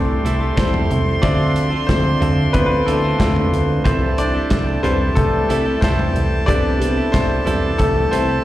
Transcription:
Already playing: analog synth bass C2, grand piano E3 A3 C4 D4 A4 C5 D5, clean electric guitar G3 A3 E4 A4, brass ensemble E4 A4 G5 C6
0.25 analog synth bass C2, clean electric guitar G3 A3 E4 A4, closed hi-hat
0.41 clean electric guitar G3 A3 E4 A4
0.56 analog synth bass C2, clean electric guitar G3 A3 E4 A4, grand piano C4 C5, kick, snare, clap, closed hi-hat
0.74 floor tom
0.91 analog synth bass C2, closed hi-hat, floor tom
1.22 analog synth bass D2, clean electric guitar D3 C4 F4 A4, grand piano F3 C4 D4 D5 E5, brass ensemble D4 D5, kick, closed hi-hat
1.56 closed hi-hat
1.70 clean electric guitar C4 F4 A4
1.87 analog synth bass D2, grand piano C4 C5, kick, snare, clap, closed hi-hat
2.20 analog synth bass D2, clean electric guitar D3 C4 F4 A4, closed hi-hat, floor tom
2.53 analog synth bass D2, grand piano B3 B4, kick, closed hi-hat
2.59 grand piano C5
2.66 grand piano B3 B4
2.86 analog synth bass D2, clean electric guitar D3 C4 F4 A4, grand piano F3 A3 C4 E4 A4, closed hi-hat
3.02 clean electric guitar C4 F4 A4
3.18 analog synth bass D2, clean electric guitar D3 C4 F4 A4, grand piano A3 A4, kick, snare, clap, closed hi-hat
3.36 floor tom
3.53 analog synth bass D2, closed hi-hat
3.84 analog synth bass C2, clean electric guitar C3 E3 G3 E4 A4, grand piano C4 C5, brass ensemble E4 G5 A5, kick, closed hi-hat
4.18 grand piano D4 D5, closed hi-hat
4.34 clean electric guitar G3 E4 A4
4.50 analog synth bass C2, kick, snare, clap, closed hi-hat
4.83 analog synth bass C2, clean electric guitar E3 G3 E4 A4, grand piano G3 C4 B4 C5, closed hi-hat, floor tom
5.15 analog synth bass C2, grand piano A3 A4, kick, closed hi-hat
5.49 analog synth bass C2, clean electric guitar E3 G3 E4 A4, closed hi-hat
5.66 clean electric guitar G3 E4 A4
5.81 analog synth bass C2, clean electric guitar E3 G3 E4 A4, grand piano C4 C5, kick, snare, clap, closed hi-hat
5.99 floor tom
6.16 analog synth bass C2, closed hi-hat
6.46 analog synth bass C2, clean electric guitar C3 E3 G3 E4 A4, grand piano G3 B3 C4 D4 D5, kick, closed hi-hat
6.80 grand piano G3 B3 C4, closed hi-hat
6.96 clean electric guitar G3 E4 A4
7.12 analog synth bass C2, grand piano C4 C5, kick, snare, clap, closed hi-hat
7.45 analog synth bass C2, clean electric guitar E3 G3 E4 A4, closed hi-hat, floor tom
7.78 analog synth bass C2, grand piano A3 A4, kick, closed hi-hat
8.11 analog synth bass C2, clean electric guitar E3 G3 E4 A4, grand piano C4 C5, closed hi-hat
8.27 clean electric guitar G3 E4 A4

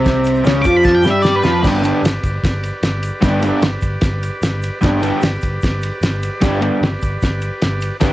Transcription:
Already playing: picked electric bass C2, overdriven electric guitar C3 C4, transistor combo organ G4 D5 B5
0.05 kick, snare, ride, shaker
0.24 ride, shaker
0.35 shaker
0.44 picked electric bass C#2, overdriven electric guitar C#3 C#4, snare, ride, shaker
0.62 picked electric bass F2, lead electric guitar D6, kick, ride, shaker
0.66 overdriven electric guitar F3 F4
0.77 lead electric guitar B5
0.83 lead electric guitar A5, kick, snare, shaker
0.95 lead electric guitar G5
1.03 picked electric bass G2, overdriven electric guitar G3 G4, snare, shaker
1.10 lead electric guitar E5
1.22 lead electric guitar D5, snare, shaker
1.36 lead electric guitar B4
1.43 picked electric bass F2, overdriven electric guitar F3 F4, snare, shaker
1.55 shaker
1.62 picked electric bass G1, overdriven electric guitar G2 D3 G3 B3 D4 G4, transistor combo organ G4 B4 D5, kick, snare, crash, shaker
1.82 overdriven electric guitar G2 D3 G3 B3 D4 G4, ride, shaker
2.02 picked electric bass G1, snare, ride, shaker
2.23 picked electric bass G1, kick, ride, shaker
2.43 picked electric bass G1, kick, snare, ride, shaker
2.64 ride, shaker
2.83 picked electric bass G1, snare, ride, shaker
3.03 ride, shaker
3.21 picked electric bass G1, overdriven electric guitar G2 D3 G3 B3 D4 G4, kick, snare, ride, shaker
3.42 overdriven electric guitar G2 D3 G3 B3 D4 G4, ride, shaker
3.61 picked electric bass G1, snare, ride, shaker
3.82 picked electric bass G1, kick, ride, shaker
4.01 picked electric bass G1, kick, snare, ride, shaker
4.23 ride, shaker
4.42 picked electric bass G1, snare, ride, shaker
4.62 ride, shaker
4.79 overdriven electric guitar G2 D3, transistor combo organ G4 B4 D5, shaker
4.83 picked electric bass G1, overdriven electric guitar G3 B3 D4 G4, kick, snare, ride
5.01 overdriven electric guitar G2 D3 G3 B3 D4 G4, ride, shaker
5.21 picked electric bass G1, snare, ride, shaker
5.41 picked electric bass G1, kick, ride, shaker
5.62 picked electric bass G1, kick, snare, ride, shaker
5.82 ride, shaker
6.01 picked electric bass G1, snare, ride, shaker
6.23 ride, shaker
6.41 picked electric bass G1, overdriven electric guitar G2 D3 G3 B3 D4 G4, kick, snare, ride, shaker
6.60 overdriven electric guitar G2 D3 G3 B3 D4 G4, ride
6.81 picked electric bass G1, snare, ride, shaker
7.02 picked electric bass G1, kick, ride, shaker
7.22 picked electric bass G1, kick, snare, ride, shaker
7.42 ride, shaker
7.62 picked electric bass G1, snare, ride, shaker
7.81 ride, shaker
8.00 picked electric bass G1, overdriven electric guitar G2 D3 G3 B3 D4 G4, transistor combo organ G4 B4 D5, kick, snare, ride, shaker

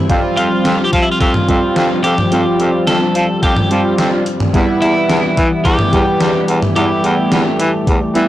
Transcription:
Already playing: analog synth pad G3 C4
0.10 baritone saxophone F2, analog synth pad F3, analog polysynth G3 C4 F4, kick, closed hi-hat
0.37 baritone saxophone F2, clean electric guitar F4, closed hi-hat
0.65 baritone saxophone F2, snare, closed hi-hat
0.84 clean electric guitar G4
0.93 baritone saxophone F3, clean electric guitar F4, kick, closed hi-hat
1.02 clean electric guitar E4
1.12 clean electric guitar F4
1.21 baritone saxophone F2, clean electric guitar F4, kick, closed hi-hat
1.34 mid tom
1.48 baritone saxophone F2, analog polysynth G3 C4 F4, kick, closed hi-hat
1.76 baritone saxophone F2, snare, closed hi-hat
2.04 baritone saxophone F2, clean electric guitar G4, closed hi-hat
2.18 mid tom
2.32 baritone saxophone F2, analog polysynth G3 C4 F4, closed hi-hat
2.60 baritone saxophone F2, closed hi-hat
2.87 baritone saxophone F2, clean electric guitar A4, snare, closed hi-hat
3.15 baritone saxophone F3, closed hi-hat
3.43 baritone saxophone F2, clean electric guitar G4, kick, closed hi-hat
3.57 mid tom
3.71 baritone saxophone F3, analog polysynth G3 C4 F4, closed hi-hat
3.98 baritone saxophone F2, snare, closed hi-hat
4.26 closed hi-hat
4.40 mid tom
4.54 baritone saxophone E2, analog synth pad E3 B3, analog polysynth G3 B3 E4, kick, closed hi-hat
4.82 baritone saxophone E2, clean electric guitar E4, closed hi-hat
5.09 baritone saxophone E2, snare, closed hi-hat
5.37 baritone saxophone E3, kick, closed hi-hat
5.65 baritone saxophone E2, clean electric guitar G4, kick, closed hi-hat
5.79 mid tom
5.93 baritone saxophone E2, analog polysynth G3 B3 G4, kick, closed hi-hat
6.21 baritone saxophone E2, snare, closed hi-hat
6.48 baritone saxophone E2, closed hi-hat
6.63 mid tom
6.76 baritone saxophone E2, analog polysynth G3 B3 E4, analog synth pad A3, clean electric guitar G4, closed hi-hat
7.04 baritone saxophone E2, closed hi-hat
7.32 baritone saxophone E2, snare, closed hi-hat
7.60 baritone saxophone E3, closed hi-hat
7.87 baritone saxophone E2, kick, closed hi-hat
8.15 baritone saxophone E3, analog polysynth G3 B3 E4, closed hi-hat

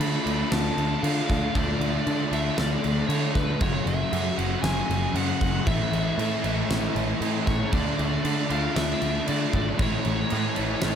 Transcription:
Already playing: overdriven electric guitar D3 A3 D4 F4, analog synth pad F4 A4 D5
0.00 picked electric bass D3, distorted electric guitar D3 A3 D4, lead electric guitar B5, crash
0.25 picked electric bass D2, overdriven electric guitar D3 A3 D4 F4, crash
0.51 picked electric bass D2, distorted electric guitar D3 A3 D4, lead electric guitar A5, snare, crash
0.76 picked electric bass D2, distorted electric guitar A3 D4, crash
1.02 overdriven electric guitar D3 A3 D4 F4, picked electric bass D3, distorted electric guitar D3 A3 D4, lead electric guitar F5, crash
1.30 picked electric bass D2, kick, snare, crash
1.54 picked electric bass D2, overdriven electric guitar D3 A3 D4 F4, distorted electric guitar D3 A3 D4, lead electric guitar D5, kick, crash
1.80 picked electric bass D2, crash
2.06 distorted electric guitar D3 A3 D4, picked electric bass D3, crash
2.32 picked electric bass D2, overdriven electric guitar D3 A3 D4 F4, lead electric guitar E5, crash
2.57 picked electric bass D2, distorted electric guitar D3 A3 D4, lead electric guitar D5, snare, crash
2.83 picked electric bass D2, distorted electric guitar A3 D4, crash
3.07 distorted electric guitar D3 A3 D4, picked electric bass D3, overdriven electric guitar D3 A3 D4, lead electric guitar C#5, crash
3.12 overdriven electric guitar F4
3.35 picked electric bass D2, lead electric guitar B4, kick, snare, crash
3.60 picked electric bass F#1, distorted electric guitar F#2 C#3 F#3, overdriven electric guitar F#2 C#3 F#3 A3 C#4 F#4, analog synth pad F#4 E5, lead electric guitar C#5, kick, crash
3.86 picked electric bass F#1, lead electric guitar E5, crash
4.12 distorted electric guitar F#2 C#3 F#3, picked electric bass F#2, crash
4.37 picked electric bass F#1, overdriven electric guitar F#2 C#3 F#3 A3 C#4 F#4, lead electric guitar F#5, crash
4.62 picked electric bass F#1, distorted electric guitar F#2 C#3 F#3, lead electric guitar G#5, snare, crash
4.89 picked electric bass F#1, distorted electric guitar C#3 F#3, crash
5.14 picked electric bass F#2, overdriven electric guitar F#2 C#3 F#3 A3 C#4 F#4, distorted electric guitar F#2 C#3, lead electric guitar F#5, crash
5.19 distorted electric guitar F#3
5.41 picked electric bass F#1, kick, crash
5.67 picked electric bass A1, overdriven electric guitar A2 E3 A3 C#4 E4, distorted electric guitar A2 E3 A3, analog synth pad C#5 G#5 A5, lead electric guitar E5, kick, crash
5.92 picked electric bass A1, crash
6.18 picked electric bass A2, distorted electric guitar A2 E3, crash
6.22 distorted electric guitar A3
6.43 picked electric bass A1, overdriven electric guitar A2 E3 A3 C#4 E4, crash
6.69 picked electric bass A1, distorted electric guitar A2 E3, snare, crash
6.74 distorted electric guitar A3
6.95 picked electric bass A1, distorted electric guitar E3 A3, crash
7.20 overdriven electric guitar A2 E3 A3 C#4 E4, distorted electric guitar A2 E3 A3, picked electric bass A2, crash
7.46 picked electric bass A1, lead electric guitar C#5, kick, snare, crash
7.72 picked electric bass D2, overdriven electric guitar D3 A3 D4 F4, distorted electric guitar D3 A3, analog synth pad F4 D5 A5, lead electric guitar D5, kick, crash
7.76 distorted electric guitar D4
7.99 picked electric bass D2, crash
8.24 distorted electric guitar D3 A3 D4, picked electric bass D3, crash
8.49 picked electric bass D2, overdriven electric guitar D3 A3 D4 F4, lead electric guitar F5, crash
8.75 picked electric bass D2, distorted electric guitar D3 A3 D4, lead electric guitar E5, snare, crash
9.02 picked electric bass D2, distorted electric guitar A3 D4, crash
9.26 overdriven electric guitar D3 A3 D4 F4, distorted electric guitar D3 A3 D4, picked electric bass D3, lead electric guitar D5, crash
9.53 picked electric bass G#1, lead electric guitar D5, kick, crash
9.78 picked electric bass A1, overdriven electric guitar A2 E3 A3 C#4 E4, distorted electric guitar A2 E3 A3, analog synth pad C#5 G#5 A5, lead electric guitar C#5, kick, crash
10.05 picked electric bass A1, crash
10.29 distorted electric guitar A2 E3 A3, picked electric bass A2, crash
10.55 picked electric bass A1, overdriven electric guitar A2 E3 A3 C#4 E4, crash
10.81 picked electric bass A1, distorted electric guitar A2 E3 A3, snare, crash

